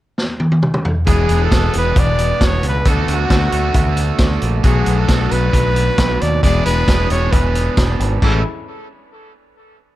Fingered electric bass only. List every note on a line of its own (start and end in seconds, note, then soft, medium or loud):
1.07 1.24 E1 medium
1.30 1.47 E1 medium
1.52 1.69 E1 medium
1.75 1.92 E1 medium
1.96 2.31 E1 medium
2.41 2.59 E1 medium
2.63 2.81 C#2 medium
2.86 3.03 D2 medium
3.08 3.25 D2 medium
3.30 3.48 D2 medium
3.52 3.70 D2 medium
3.75 4.10 D2 medium
4.19 4.37 D2 medium
4.42 4.60 A#1 medium
4.65 4.82 B1 loud
4.87 5.04 B1 medium
5.09 5.27 B1 medium
5.32 5.49 B1 medium
5.54 5.89 B1 medium
5.98 6.16 B1 loud
6.22 6.39 D#2 medium
6.43 6.61 E1 medium
6.66 6.83 E1 medium
6.88 7.05 E1 medium
7.11 7.28 E1 medium
7.33 7.67 E1 medium
7.78 7.95 E1 medium
8.00 8.17 G#1 medium
8.22 8.43 A1 medium